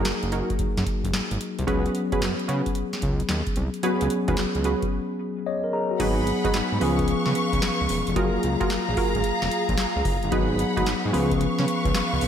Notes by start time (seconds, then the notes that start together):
Already playing: F#3 A#3 D#4 F#4 G#4
0.05 F#1, snare, clap, closed hi-hat
0.23 F#1, closed hi-hat
0.32 D#4 F#4 G#4 A#4, closed hi-hat
0.50 kick, closed hi-hat
0.59 F#2, kick, closed hi-hat
0.77 F#2, snare, closed hi-hat
0.86 kick, closed hi-hat
1.04 F#1, kick, closed hi-hat
1.14 G#1, snare, clap, closed hi-hat
1.31 G#1, closed hi-hat
1.41 closed hi-hat
1.59 C2, closed hi-hat
1.67 C#2 F#3 B3 C#4 F#4 G#4 B4, kick, closed hi-hat
1.86 closed hi-hat
1.95 closed hi-hat
2.12 F#2 C#4 F#4 G#4 B4, kick, closed hi-hat
2.21 F#2, snare, clap, closed hi-hat
2.39 closed hi-hat
2.48 C#3 C#4 F#4 G#4 B4, closed hi-hat
2.66 kick, closed hi-hat
2.75 closed hi-hat
2.93 snare, closed hi-hat
3.02 C#2, kick, closed hi-hat
3.20 closed hi-hat
3.29 D#2, snare, clap, closed hi-hat
3.47 kick, closed hi-hat
3.56 C2, closed hi-hat
3.74 closed hi-hat
3.83 F#3 B3 C#4 F#4 G#4 B4, closed hi-hat
4.01 C#2, closed hi-hat
4.10 closed hi-hat
4.28 D#2 C#4 F#4 G#4 B4, kick, closed hi-hat
4.37 C#2, snare, clap, closed hi-hat
4.55 C#2, closed hi-hat
4.64 C#4 F#4 G#4 B4, closed hi-hat
4.82 kick, closed hi-hat
5.46 C#5 D#5
5.64 A#4
5.73 G#4 A#5
5.91 F#4
6.00 G#1 F#3 B3 D#4 F#4 G#4 B4 F#5 B5, kick, closed hi-hat, crash
6.27 closed hi-hat
6.44 G#1 D#4 F#4 G#4 B4, kick, closed hi-hat
6.54 G#2, snare, clap, closed hi-hat
6.72 G#2
6.80 C#2 F3 B3 C#4 F4 G#4 B4 F5 C#6, open hi-hat
6.99 kick, closed hi-hat
7.08 closed hi-hat
7.26 C#3, snare
7.35 closed hi-hat
7.53 C#2, kick, closed hi-hat
7.62 snare, clap, closed hi-hat
7.81 C#2
7.89 E1, open hi-hat
8.07 F1, closed hi-hat
8.15 F#1 F#3 A#3 F4 F#4 G#4 A#4 F5 A#5, kick, closed hi-hat
8.24 G#4
8.43 C#2, closed hi-hat
8.60 F4 F#4 G#4 A#4, kick, closed hi-hat
8.70 snare, clap, closed hi-hat
8.89 A#1
8.97 F4 F#4 G#4 A#4, kick, open hi-hat
9.15 G#1, kick, closed hi-hat
9.24 closed hi-hat
9.42 F1, snare
9.51 closed hi-hat
9.69 A#1, kick, closed hi-hat
9.78 snare, clap, closed hi-hat
9.96 C#2
10.05 F#1, kick, open hi-hat
10.23 G1, closed hi-hat
10.31 G#1 F#3 B3 D#4 F#4 G#4 B4 F#5 B5, kick, closed hi-hat
10.59 closed hi-hat
10.77 G#1 D#4 F#4 G#4 B4, kick, closed hi-hat
10.86 G#2, snare, clap, closed hi-hat
11.05 G#2
11.12 C#2 F3 B3 C#4 F4 G#4 B4 F5 C#6, open hi-hat
11.31 kick, closed hi-hat
11.41 closed hi-hat
11.59 C#3, snare
11.68 closed hi-hat
11.85 C#2, kick, closed hi-hat
11.95 snare, clap, closed hi-hat
12.13 C#2
12.21 B1, open hi-hat